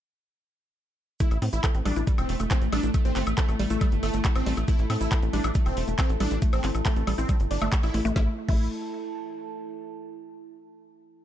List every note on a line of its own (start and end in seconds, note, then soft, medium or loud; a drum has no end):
1.20 1.25 A3 medium
1.20 8.20 A3 medium
1.20 1.38 E4 medium
1.20 8.15 E4 medium
1.20 kick loud
1.20 closed hi-hat loud
1.20 shaker medium
1.31 1.38 A1 medium
1.31 closed hi-hat soft
1.31 high woodblock soft
1.31 shaker soft
1.40 1.49 A2 loud
1.40 1.47 C4 medium
1.40 8.16 A4 medium
1.40 open hi-hat loud
1.52 1.60 A1 loud
1.52 1.70 E4 loud
1.52 closed hi-hat soft
1.52 shaker medium
1.64 1.67 A4 medium
1.64 kick loud
1.64 clap loud
1.64 closed hi-hat medium
1.64 high woodblock medium
1.64 shaker medium
1.75 1.82 A1 medium
1.75 1.77 C4 medium
1.75 closed hi-hat soft
1.75 shaker soft
1.85 1.93 A1 loud
1.85 1.88 G3 loud
1.85 2.03 D4 loud
1.85 open hi-hat loud
1.85 high woodblock soft
1.96 2.03 A1 medium
1.96 1.99 E4 medium
1.96 closed hi-hat soft
1.96 shaker medium
2.07 2.12 G3 loud
2.07 kick loud
2.07 closed hi-hat medium
2.07 shaker medium
2.16 2.25 E1 medium
2.16 2.35 C4 loud
2.16 8.16 A5 medium
2.16 closed hi-hat soft
2.16 high woodblock medium
2.16 shaker soft
2.29 2.36 E1 loud
2.29 open hi-hat loud
2.39 2.47 E1 loud
2.39 2.45 A3 medium
2.39 closed hi-hat soft
2.39 high woodblock soft
2.39 shaker medium
2.51 2.62 C4 medium
2.51 kick loud
2.51 clap loud
2.51 closed hi-hat loud
2.51 shaker medium
2.62 2.69 A1 medium
2.62 closed hi-hat soft
2.62 shaker soft
2.72 2.80 A1 loud
2.72 2.75 G3 loud
2.72 2.90 D4 loud
2.72 open hi-hat loud
2.72 high woodblock medium
2.83 2.90 A1 medium
2.83 2.86 E4 medium
2.83 closed hi-hat soft
2.83 shaker medium
2.94 2.99 A3 medium
2.94 kick loud
2.94 closed hi-hat medium
2.94 high woodblock soft
2.94 shaker medium
3.05 3.12 A1 medium
3.05 3.22 C4 loud
3.05 closed hi-hat soft
3.05 shaker soft
3.16 3.23 G1 medium
3.16 3.21 C4 medium
3.16 clap medium
3.16 open hi-hat loud
3.27 3.34 A1 loud
3.27 closed hi-hat soft
3.27 high woodblock medium
3.27 shaker medium
3.37 3.55 A3 loud
3.37 3.41 A4 medium
3.37 kick loud
3.37 clap loud
3.37 closed hi-hat medium
3.37 shaker medium
3.49 3.56 A1 medium
3.49 3.51 C4 medium
3.49 closed hi-hat soft
3.49 high woodblock soft
3.49 shaker soft
3.59 3.67 A1 loud
3.59 3.62 G3 loud
3.59 open hi-hat loud
3.70 3.77 A1 medium
3.70 3.87 A3 loud
3.70 3.73 E4 medium
3.70 closed hi-hat soft
3.70 shaker medium
3.81 3.86 G3 loud
3.81 kick loud
3.81 closed hi-hat medium
3.81 high woodblock medium
3.81 shaker medium
3.92 3.99 G1 medium
3.92 closed hi-hat soft
3.92 shaker soft
4.03 4.10 G1 loud
4.03 4.20 A3 loud
4.03 open hi-hat loud
4.03 high woodblock soft
4.13 4.21 G1 loud
4.13 4.19 A3 medium
4.13 closed hi-hat soft
4.13 shaker medium
4.25 kick loud
4.25 clap loud
4.25 closed hi-hat medium
4.25 shaker medium
4.35 4.43 A1 medium
4.35 4.53 C4 loud
4.35 closed hi-hat soft
4.35 high woodblock medium
4.35 shaker soft
4.46 4.53 A1 loud
4.46 4.49 G3 loud
4.46 open hi-hat loud
4.57 4.64 A1 medium
4.57 4.60 E4 medium
4.57 closed hi-hat soft
4.57 high woodblock soft
4.57 shaker medium
4.68 4.73 A3 medium
4.68 4.85 E4 loud
4.68 kick loud
4.68 closed hi-hat medium
4.68 shaker medium
4.79 4.86 A1 medium
4.79 closed hi-hat soft
4.79 shaker soft
4.90 4.97 A2 loud
4.90 4.95 C4 medium
4.90 open hi-hat loud
4.90 high woodblock medium
5.00 5.08 A1 medium
5.00 5.18 E4 medium
5.00 closed hi-hat soft
5.00 shaker medium
5.12 5.14 A4 medium
5.12 kick loud
5.12 clap loud
5.12 closed hi-hat medium
5.12 high woodblock soft
5.12 shaker medium
5.22 5.30 A1 medium
5.22 5.25 C4 medium
5.22 closed hi-hat soft
5.22 shaker soft
5.33 5.40 A1 loud
5.33 5.36 G3 loud
5.33 5.51 D4 loud
5.33 open hi-hat loud
5.44 5.51 A1 medium
5.44 5.47 E4 medium
5.44 closed hi-hat soft
5.44 high woodblock medium
5.44 shaker medium
5.54 5.60 G3 loud
5.54 kick loud
5.54 closed hi-hat medium
5.54 shaker medium
5.65 5.73 E1 medium
5.65 5.83 C4 medium
5.65 closed hi-hat soft
5.65 high woodblock soft
5.65 shaker soft
5.77 5.84 E1 loud
5.77 open hi-hat loud
5.88 5.95 E1 loud
5.88 5.92 A3 medium
5.88 closed hi-hat soft
5.88 shaker medium
5.99 6.10 C4 medium
5.99 kick loud
5.99 clap loud
5.99 closed hi-hat medium
5.99 high woodblock medium
5.99 shaker medium
6.09 6.17 A1 medium
6.09 closed hi-hat soft
6.09 shaker soft
6.20 6.27 A1 loud
6.20 6.23 G3 loud
6.20 6.38 D4 loud
6.20 open hi-hat loud
6.20 high woodblock soft
6.31 6.38 A1 medium
6.31 6.34 E4 medium
6.31 closed hi-hat soft
6.31 shaker medium
6.42 6.47 A3 medium
6.42 kick loud
6.42 closed hi-hat medium
6.42 shaker medium
6.53 6.60 A1 medium
6.53 6.70 C4 loud
6.53 closed hi-hat soft
6.53 high woodblock medium
6.53 shaker soft
6.64 6.71 G1 medium
6.64 6.69 C4 medium
6.64 clap medium
6.64 open hi-hat loud
6.75 6.82 A1 medium
6.75 closed hi-hat soft
6.75 high woodblock soft
6.75 shaker medium
6.85 7.03 A3 loud
6.85 6.88 A4 medium
6.85 kick loud
6.85 clap loud
6.85 closed hi-hat medium
6.85 shaker medium
6.96 7.03 A1 medium
6.96 6.99 C4 medium
6.96 closed hi-hat soft
6.96 shaker soft
7.07 7.14 A1 loud
7.07 7.10 G3 loud
7.07 open hi-hat loud
7.07 high woodblock medium
7.18 7.25 A1 medium
7.18 7.35 C4 loud
7.18 7.21 E4 medium
7.18 closed hi-hat soft
7.18 shaker medium
7.29 7.34 G3 loud
7.29 kick loud
7.29 closed hi-hat medium
7.29 high woodblock soft
7.29 shaker medium
7.40 7.47 G1 medium
7.40 closed hi-hat soft
7.40 shaker soft
7.51 7.58 G1 loud
7.51 7.68 D4 loud
7.51 open hi-hat loud
7.61 7.69 G1 loud
7.61 7.66 A3 loud
7.61 closed hi-hat soft
7.61 high woodblock medium
7.61 shaker medium
7.72 kick loud
7.72 clap loud
7.72 closed hi-hat medium
7.72 shaker medium
7.83 7.90 A1 medium
7.83 8.01 E4 loud
7.83 closed hi-hat soft
7.83 high woodblock soft
7.83 shaker soft
7.94 8.01 A1 loud
7.94 7.99 A3 medium
7.94 open hi-hat loud
8.05 8.12 A1 medium
8.05 8.10 A3 loud
8.05 closed hi-hat soft
8.05 shaker medium
8.16 8.28 A1 loud
8.16 8.28 A3 loud
8.16 9.86 E4 medium
8.16 8.28 E4 medium
8.16 kick loud
8.16 snare medium
8.22 9.86 A4 medium
8.29 9.86 A5 medium
8.49 8.69 A1 loud
8.49 8.69 A3 medium
8.49 8.65 E4 medium
8.49 kick loud
8.49 crash medium